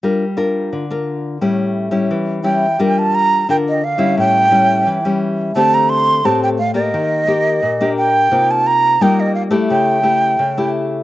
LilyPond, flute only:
\new Staff \with { instrumentName = "Flute" } { \time 4/4 \key g \minor \tempo 4 = 87 r2. r8 g''8~ | g''16 a''16 bes''8 g''16 ees''16 f''8 g''4. r8 | a''16 bes''16 c'''8 a''16 g''16 f''16 ees''4.~ ees''16 g''8~ | g''16 a''16 bes''8 g''16 ees''16 f''8 g''4. r8 | }